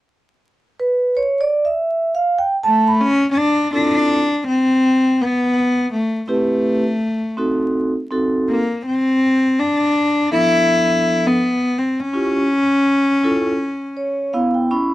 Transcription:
0.80 1.17 B4 medium
1.17 1.42 C#5 medium
1.41 1.66 D5 medium
1.65 2.10 E5 medium
2.15 2.37 F5 medium
2.39 2.49 G5 medium
2.63 3.03 A3 medium
2.63 2.88 A5 loud
2.88 3.04 B5 medium
3.01 3.30 C#4 loud
3.31 3.39 C#4 medium
3.37 3.73 D4 loud
3.72 4.17 C4 medium
3.72 4.42 D4 loud
3.72 4.18 E4 medium
3.72 4.18 F4 medium
3.72 4.18 A4 medium
4.48 5.23 C4 loud
5.21 5.93 B3 loud
5.93 6.27 A3 medium
6.28 7.72 A3 medium
6.28 6.82 C4 medium
6.28 6.82 E4 medium
6.28 6.82 G4 medium
6.28 6.82 B4 medium
7.37 7.91 C4 medium
7.37 7.91 D#4 medium
7.37 7.91 F#4 medium
7.37 7.92 A4 medium
8.11 8.56 C4 medium
8.11 8.56 D#4 medium
8.11 8.57 F#4 medium
8.11 8.57 A4 medium
8.49 8.83 A#3 medium
8.86 9.61 C4 loud
9.59 10.32 D4 loud
10.30 11.35 F3 medium
10.30 11.34 B3 medium
10.30 11.34 D4 medium
10.30 11.29 E4 loud
10.30 11.35 A4 medium
11.27 11.80 B3 loud
11.79 12.02 C4 medium
12.00 14.34 C#4 loud
12.13 12.41 C#4 medium
12.13 12.41 E4 medium
12.13 12.41 F4 medium
12.13 12.41 G4 medium
13.23 13.51 C#4 medium
13.23 13.51 E4 medium
13.23 13.51 F4 medium
13.23 13.51 A4 medium
13.97 14.31 C#5 medium
14.33 14.68 B3 medium
14.33 14.68 E4 medium
14.33 14.53 F5 medium
14.54 14.69 G5 medium
14.71 14.94 C#4 loud
14.71 14.94 E4 medium
14.71 14.94 B5 medium

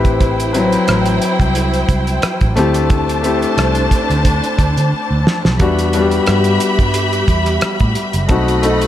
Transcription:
0.00 0.75 A1 medium
0.00 0.42 C4 medium
0.00 0.42 E4 medium
0.00 2.53 E4 medium
0.00 0.43 G4 medium
0.00 0.41 B4 medium
0.00 2.53 C5 medium
0.00 2.53 G5 medium
0.05 kick medium
0.05 closed hi-hat soft
0.21 kick loud
0.21 closed hi-hat medium
0.40 closed hi-hat medium
0.53 1.59 F#3 medium
0.53 1.58 C4 medium
0.53 1.59 E4 medium
0.53 1.57 B4 medium
0.53 closed hi-hat medium
0.72 closed hi-hat soft
0.88 1.18 A1 medium
0.88 cross-stick medium
0.88 closed hi-hat medium
1.06 closed hi-hat soft
1.22 closed hi-hat medium
1.40 1.83 C2 medium
1.40 kick medium
1.40 closed hi-hat soft
1.55 closed hi-hat medium
1.73 closed hi-hat soft
1.89 2.18 C2 medium
1.89 kick medium
1.89 closed hi-hat medium
2.07 closed hi-hat soft
2.22 muted fingered electric bass stroke soft
2.22 cross-stick loud
2.22 closed hi-hat medium
2.41 2.55 A1 medium
2.41 kick medium
2.41 closed hi-hat soft
2.56 3.45 D2 medium
2.56 3.11 A3 medium
2.56 3.12 C4 medium
2.56 5.56 D4 medium
2.56 3.12 E4 medium
2.56 3.13 G4 medium
2.56 5.56 C5 medium
2.56 5.56 A5 medium
2.56 closed hi-hat medium
2.74 closed hi-hat soft
2.90 kick loud
2.90 closed hi-hat medium
3.09 closed hi-hat medium
3.23 4.27 A3 medium
3.23 4.28 C4 medium
3.23 4.28 E4 medium
3.23 4.29 G4 medium
3.23 closed hi-hat medium
3.42 closed hi-hat soft
3.57 3.87 C2 medium
3.57 cross-stick medium
3.57 closed hi-hat medium
3.75 closed hi-hat soft
3.91 kick medium
3.91 closed hi-hat medium
4.10 4.39 D2 medium
4.10 closed hi-hat soft
4.25 kick medium
4.25 closed hi-hat medium
4.44 closed hi-hat soft
4.59 4.75 D2 medium
4.59 kick medium
4.59 closed hi-hat medium
4.77 4.91 D3 medium
4.77 closed hi-hat soft
4.93 muted fingered electric bass stroke soft
5.11 5.24 D2 medium
5.27 snare medium
5.45 5.58 B1 medium
5.45 snare medium
5.59 6.19 E2 medium
5.59 5.86 G3 medium
5.59 5.86 B3 medium
5.59 5.87 D4 medium
5.59 5.88 F#4 medium
5.59 8.26 G4 medium
5.59 8.26 E5 medium
5.59 8.26 B5 medium
5.59 kick loud
5.59 closed hi-hat medium
5.79 closed hi-hat medium
5.93 6.97 G3 medium
5.93 6.97 B3 medium
5.93 6.98 D4 medium
5.93 6.02 F#4 medium
5.93 closed hi-hat medium
6.02 7.02 G4 medium
6.11 closed hi-hat soft
6.26 6.57 G2 medium
6.26 cross-stick medium
6.26 closed hi-hat medium
6.44 closed hi-hat soft
6.60 closed hi-hat medium
6.79 7.22 G2 medium
6.79 kick medium
6.79 closed hi-hat soft
6.94 closed hi-hat medium
7.13 closed hi-hat soft
7.28 7.58 E2 medium
7.28 kick medium
7.28 closed hi-hat medium
7.46 cross-stick soft
7.46 closed hi-hat soft
7.61 muted fingered electric bass stroke soft
7.61 cross-stick loud
7.61 closed hi-hat medium
7.80 7.94 A2 medium
7.80 kick medium
7.80 closed hi-hat soft
7.95 closed hi-hat medium
8.13 8.27 F#1 medium
8.13 closed hi-hat soft
8.28 8.87 B1 medium
8.28 8.55 A3 medium
8.28 8.56 C4 medium
8.28 8.56 D#4 medium
8.28 8.87 F#4 medium
8.28 8.57 F#4 medium
8.28 8.87 D#5 medium
8.28 8.87 B5 medium
8.28 kick loud
8.28 closed hi-hat medium
8.48 closed hi-hat soft
8.62 8.87 A3 medium
8.62 8.87 C4 medium
8.62 8.87 D#4 medium
8.62 8.87 A4 medium
8.62 closed hi-hat medium
8.81 closed hi-hat soft

